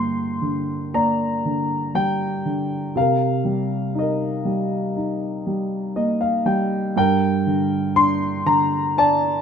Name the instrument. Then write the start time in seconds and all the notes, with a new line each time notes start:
grand piano
Already playing: G2 D3 A#3 A#4 G5 C6
0.42 D3
0.94 A#3 D5 A#5
1.45 D3
1.95 G3 G5
2.45 D3
2.95 C3 A#4 F5
3.45 G3
3.95 D#4
3.99 A#4 D#5
4.45 G3
4.96 D#4
5.47 G3
5.96 A#3 D#5
6.21 F5
6.46 G3 G5
6.96 G2 A#4 G5
7.46 D3
7.96 D4 C6
8.46 D3 A#5
8.97 D4 D5 A5